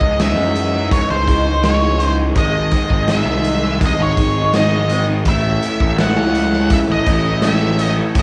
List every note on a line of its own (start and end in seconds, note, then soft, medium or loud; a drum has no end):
0.00 0.36 C#2 medium
0.00 0.18 C#3 medium
0.00 0.21 G#3 medium
0.00 2.32 C#4 medium
0.00 0.22 D#4 medium
0.00 5.22 G#4 medium
0.00 0.21 D#5 medium
0.00 kick medium
0.04 0.19 E3 soft
0.19 0.90 C#3 medium
0.19 0.76 E3 medium
0.19 0.74 G#3 medium
0.19 0.72 D#4 medium
0.19 0.88 E5 medium
0.19 snare medium
0.19 closed hi-hat medium
0.36 0.98 F#2 medium
0.55 closed hi-hat soft
0.73 0.91 E3 medium
0.73 0.93 G#3 medium
0.73 0.94 D#4 medium
0.91 1.26 C#3 medium
0.91 1.11 E3 medium
0.91 1.10 G#3 medium
0.91 1.08 D#4 medium
0.91 1.09 C#5 medium
0.91 kick medium
0.91 closed hi-hat medium
1.09 1.25 C#2 medium
1.09 1.28 E3 medium
1.09 1.29 G#3 medium
1.09 1.30 D#4 medium
1.09 1.65 C5 medium
1.28 2.36 C#2 medium
1.28 1.61 C#3 medium
1.28 1.48 E3 medium
1.28 1.47 G#3 medium
1.28 1.45 D#4 medium
1.28 kick medium
1.28 closed hi-hat medium
1.46 1.63 E3 medium
1.46 1.64 G#3 medium
1.46 1.65 D#4 medium
1.63 1.99 C#3 medium
1.63 2.00 E3 medium
1.63 2.01 G#3 medium
1.63 2.02 D#4 medium
1.63 2.01 C#5 medium
1.63 snare medium
1.63 closed hi-hat medium
2.00 2.34 C#3 medium
2.00 2.20 E3 medium
2.00 2.18 G#3 medium
2.00 2.16 D#4 medium
2.00 2.15 C5 medium
2.00 closed hi-hat medium
2.17 2.35 E3 medium
2.17 2.35 G#3 medium
2.17 2.33 D#4 medium
2.35 2.67 G#1 medium
2.35 3.08 G#2 medium
2.35 5.23 D#3 medium
2.35 2.71 D#3 medium
2.35 2.72 G#3 medium
2.35 2.74 C4 medium
2.35 3.11 D#5 medium
2.35 5.23 C6 medium
2.35 kick medium
2.35 closed hi-hat medium
2.40 2.75 D#4 medium
2.71 3.08 D#3 medium
2.71 2.93 G#3 medium
2.71 2.92 C4 medium
2.71 kick medium
2.71 closed hi-hat medium
2.76 2.90 D#4 medium
2.90 3.27 G#1 medium
2.90 3.09 G#3 medium
2.90 3.11 C4 medium
2.90 3.11 D#4 medium
2.90 kick medium
3.08 3.99 G#2 medium
3.08 3.79 D#3 medium
3.08 3.65 G#3 loud
3.08 3.78 E5 medium
3.08 snare medium
3.08 closed hi-hat medium
3.12 3.64 C4 medium
3.12 3.62 D#4 medium
3.27 3.88 C2 medium
3.44 closed hi-hat soft
3.63 3.81 G#3 medium
3.63 3.82 C4 medium
3.63 3.83 D#4 medium
3.80 4.15 D#3 medium
3.80 4.01 G#3 medium
3.80 3.99 C4 medium
3.80 3.98 D#4 medium
3.80 kick loud
3.80 closed hi-hat medium
3.86 4.02 D#5 medium
3.99 4.14 G#1 medium
3.99 4.17 G#3 soft
3.99 4.17 C4 medium
3.99 4.19 D#4 medium
3.99 4.56 C#5 medium
4.16 5.26 G#1 medium
4.16 4.53 D#3 medium
4.16 4.37 G#3 medium
4.16 4.35 C4 medium
4.16 4.33 D#4 medium
4.16 kick medium
4.16 closed hi-hat medium
4.35 4.53 G#3 soft
4.35 4.54 C4 medium
4.35 4.55 D#4 medium
4.53 5.23 G#2 medium
4.53 4.88 D#3 medium
4.53 4.89 G#3 medium
4.53 4.91 C4 medium
4.53 4.92 D#4 medium
4.53 5.05 D#5 medium
4.53 snare medium
4.53 closed hi-hat medium
4.89 5.23 D#3 medium
4.89 5.10 G#3 medium
4.89 5.08 C4 medium
4.89 5.07 D#4 medium
4.89 closed hi-hat soft
5.08 5.25 G#3 soft
5.08 5.24 C4 medium
5.08 5.24 D#4 medium
5.25 5.57 A1 medium
5.25 5.98 A2 medium
5.25 5.63 E3 medium
5.25 5.64 A3 medium
5.25 5.65 C#4 medium
5.25 8.22 E4 medium
5.25 8.22 A4 medium
5.25 8.22 C#5 medium
5.25 5.96 E5 medium
5.25 kick loud
5.25 closed hi-hat medium
5.30 5.66 E4 medium
5.62 5.99 E3 medium
5.62 5.84 A3 medium
5.62 5.82 C#4 medium
5.62 5.80 E4 medium
5.62 closed hi-hat soft
5.80 6.17 A1 medium
5.80 6.00 A3 medium
5.80 6.01 C#4 medium
5.80 6.01 E4 medium
5.80 kick medium
5.98 7.41 A2 medium
5.98 6.70 E3 medium
5.98 6.56 A3 medium
5.98 6.54 C#4 medium
5.98 6.52 E4 medium
5.98 6.74 F#5 medium
5.98 snare loud
5.98 closed hi-hat medium
6.17 6.78 C#2 medium
6.35 closed hi-hat soft
6.53 6.71 A3 medium
6.53 6.72 C#4 medium
6.53 6.73 E4 medium
6.53 snare soft
6.70 7.05 E3 medium
6.70 6.91 A3 medium
6.70 6.89 C#4 medium
6.70 6.87 E4 medium
6.70 6.79 E5 medium
6.70 kick loud
6.70 closed hi-hat medium
6.87 7.04 A1 medium
6.87 7.06 A3 medium
6.87 7.08 C#4 soft
6.87 7.08 E4 medium
6.92 7.46 D#5 medium
7.05 7.99 A1 medium
7.05 7.42 E3 medium
7.05 7.27 A3 medium
7.05 7.26 C#4 medium
7.05 7.24 E4 medium
7.05 kick medium
7.05 closed hi-hat soft
7.24 7.43 A3 medium
7.24 7.44 C#4 medium
7.24 7.45 E4 medium
7.42 8.14 A2 medium
7.42 7.77 E3 medium
7.42 7.79 A3 medium
7.42 7.80 C#4 medium
7.42 7.81 E4 medium
7.42 snare medium
7.42 closed hi-hat medium
7.46 7.82 E5 medium
7.78 8.14 E3 medium
7.78 7.98 A3 medium
7.78 7.96 C#4 medium
7.78 7.95 E4 medium
7.78 closed hi-hat medium
7.82 7.95 D#5 medium
7.96 8.15 A3 soft
7.96 8.16 C#4 medium
7.96 8.17 E4 medium
8.14 8.22 A1 medium
8.14 8.22 A2 medium
8.14 8.22 E3 medium
8.14 8.22 A3 medium
8.14 8.22 C#4 medium
8.14 8.22 E4 medium
8.14 kick medium
8.14 closed hi-hat medium